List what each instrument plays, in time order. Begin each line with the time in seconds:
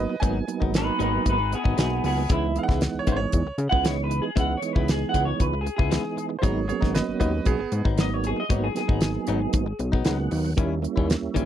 Already playing: tonewheel organ F#3 A#3 B3 D#4, upright piano B4 D#5
0.10 muted clean electric guitar stroke
0.20 analog synth bass G#1, clean electric guitar G#2 F#3 B3 D#4, tonewheel organ F#3 A#3 B3 D#4, upright piano G#5, kick, closed hi-hat
0.47 tonewheel organ F#3 A#3 B3 D#4, muted clean electric guitar stroke, closed hi-hat
0.60 analog synth bass G#1, clean electric guitar F#3 B3 D#4, kick
0.73 clean electric guitar D#4, muted clean electric guitar stroke, snare, closed hi-hat
0.77 clean electric guitar B4
0.99 analog synth bass G#1, clean electric guitar G#2 F#3 B3 D#4 B4, closed hi-hat
1.13 muted clean electric guitar stroke
1.26 analog synth bass G#1, clean electric guitar D#4, kick, closed hi-hat
1.30 clean electric guitar B4
1.38 muted clean electric guitar stroke
1.52 clean electric guitar B3 G#4, muted clean electric guitar stroke, closed hi-hat
1.64 analog synth bass G#1, clean electric guitar F#3 B3 D#4, kick
1.77 analog synth bass B1, clean electric guitar G#2 F#3 B3 D#4 G#4, tonewheel organ F#3 A#3 B3 D#4, snare, closed hi-hat
1.90 muted clean electric guitar stroke
2.04 analog synth bass C#2, clean electric guitar B3 G#4, muted clean electric guitar stroke, open hi-hat
2.17 muted clean electric guitar stroke
2.29 analog synth bass C#2, clean electric guitar C#3 G#3 B3 E4, tonewheel organ E3 G#3 B3 D#4, kick, closed hi-hat
2.55 tonewheel organ E3 G#3 B3 D#4, upright piano F5, muted clean electric guitar stroke, closed hi-hat
2.63 upright piano F#5
2.68 analog synth bass C#2, clean electric guitar G#3 B3 E4, kick, snare
2.81 snare, closed hi-hat
2.94 analog synth bass C#2
2.99 upright piano C#5
3.07 analog synth bass G#1, clean electric guitar C#3 G#3 B3 E4, kick, closed hi-hat
3.12 upright piano C5
3.17 upright piano C#5, muted clean electric guitar stroke
3.32 analog synth bass E2, kick, closed hi-hat
3.46 analog synth bass C#2, muted clean electric guitar stroke
3.58 analog synth bass C#3, muted clean electric guitar stroke, closed hi-hat
3.69 analog synth bass C#2, clean electric guitar B3 E4 F#5, kick
3.74 clean electric guitar G#3
3.84 clean electric guitar C#3 G#3 B3 E4 C#5, tonewheel organ E3 G#3 B3 D#4, snare, closed hi-hat
3.98 muted clean electric guitar stroke
4.04 clean electric guitar B4
4.10 muted clean electric guitar stroke, closed hi-hat
4.22 clean electric guitar G#4, muted clean electric guitar stroke
4.36 analog synth bass C#2, clean electric guitar C#3 G#3 B3 E4 F#5, tonewheel organ E3 G#3 B3 D#4, kick, closed hi-hat
4.57 clean electric guitar C#5
4.62 tonewheel organ E3 G#3 B3 D#4, muted clean electric guitar stroke, closed hi-hat
4.73 analog synth bass C#2, clean electric guitar B3 E4 B4, kick
4.78 clean electric guitar G#3
4.88 clean electric guitar G#4, snare, closed hi-hat
5.09 clean electric guitar F#5
5.14 analog synth bass C#2, clean electric guitar C#3 G#3 B3 E4, kick, closed hi-hat
5.25 clean electric guitar C#5, muted clean electric guitar stroke
5.40 analog synth bass C#2, clean electric guitar B4, kick, closed hi-hat
5.54 muted clean electric guitar stroke
5.61 clean electric guitar G#4
5.65 muted clean electric guitar stroke, closed hi-hat
5.76 analog synth bass C#2, clean electric guitar B3 E4 G#4, kick
5.81 clean electric guitar G#3
5.90 clean electric guitar C#3 G#3 B3 E4, tonewheel organ E3 G#3 B3 D#4, snare, closed hi-hat
6.04 muted clean electric guitar stroke
6.16 muted clean electric guitar stroke, closed hi-hat
6.29 muted clean electric guitar stroke
6.39 clean electric guitar G#2, upright piano G#4 C5
6.43 analog synth bass G#1, clean electric guitar F#3 B3 D#4, tonewheel organ F#3 A#3 B3 D#4, upright piano C#5, kick, closed hi-hat
6.67 tonewheel organ F#3 A#3 B3 C#4, upright piano G#4 C#5, muted clean electric guitar stroke, closed hi-hat
6.81 analog synth bass G#1, clean electric guitar F#3 B3 D#4, kick, snare
6.94 upright piano B4 D#5, muted clean electric guitar stroke, snare, closed hi-hat
7.08 analog synth bass G#1
7.20 analog synth bass D#2, clean electric guitar G#2 F#3 B3 D#4, upright piano B4 D#5, kick, closed hi-hat
7.33 muted clean electric guitar stroke
7.45 analog synth bass B1, upright piano B3 G#4, kick, closed hi-hat
7.59 analog synth bass G#1, muted clean electric guitar stroke
7.72 analog synth bass G#2, muted clean electric guitar stroke, closed hi-hat
7.85 analog synth bass G#1, clean electric guitar F#3 B3 D#4, kick
7.97 clean electric guitar G#2 F#3 B3 D#4 D#5, tonewheel organ F#3 A#3 B3 D#4, snare, closed hi-hat
8.10 clean electric guitar C#5, muted clean electric guitar stroke
8.23 clean electric guitar G#4, muted clean electric guitar stroke, closed hi-hat
8.37 clean electric guitar D#5, muted clean electric guitar stroke
8.49 analog synth bass G#1, clean electric guitar G#2 F#3 B3 D#4 C#5, tonewheel organ F#3 A#3 B3 D#4, kick, closed hi-hat
8.64 clean electric guitar G#4
8.74 tonewheel organ F#3 A#3 B3 D#4, clean electric guitar G#4, muted clean electric guitar stroke, snare, closed hi-hat
8.88 analog synth bass G#1, clean electric guitar F#3 B3 D#4, kick
9.01 muted clean electric guitar stroke, snare, closed hi-hat
9.27 analog synth bass G#1, clean electric guitar G#2 F#3 B3 D#4, closed hi-hat
9.40 muted clean electric guitar stroke
9.53 analog synth bass G#1, kick, closed hi-hat
9.66 muted clean electric guitar stroke
9.79 analog synth bass B1, muted clean electric guitar stroke, closed hi-hat
9.92 clean electric guitar F#3 B3 D#4, kick
10.05 analog synth bass C#2, clean electric guitar G#2 F#3 B3 D#4, tonewheel organ F#3 A#3 B3 D#4 F#5, snare, closed hi-hat
10.19 muted clean electric guitar stroke
10.31 analog synth bass D#2, muted clean electric guitar stroke, open hi-hat
10.45 muted clean electric guitar stroke
10.56 analog synth bass D#2, clean electric guitar D#3 G3 C#4 E4, tonewheel organ G3 A#3 C#4 E4, kick, closed hi-hat
10.82 tonewheel organ G3 A#3 C#4 E4, muted clean electric guitar stroke, closed hi-hat
10.96 analog synth bass D#2, clean electric guitar G3 C#4 E4, kick
11.09 muted clean electric guitar stroke, snare, closed hi-hat
11.22 analog synth bass D#2
11.34 analog synth bass A#1, clean electric guitar D#3 G3 C#4 E4, kick, closed hi-hat